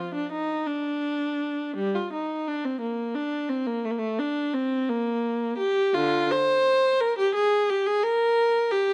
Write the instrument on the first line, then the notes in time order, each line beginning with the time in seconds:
viola
Already playing: F4
0.14 D4
0.32 D#4
0.67 D4
1.76 G3
1.95 F4
2.13 D#4
2.48 D4
2.65 C4
2.81 A#3
3.15 D4
3.49 C4
3.67 A#3
3.85 A3
3.91 A#3
3.98 A3
4.19 D4
4.54 C4
4.89 A#3
5.58 G4
5.94 D3 F4
6.31 C5
7.01 A#4
7.18 G4
7.35 G#4
7.69 G4
7.87 G#4
8.03 A#4
8.71 G4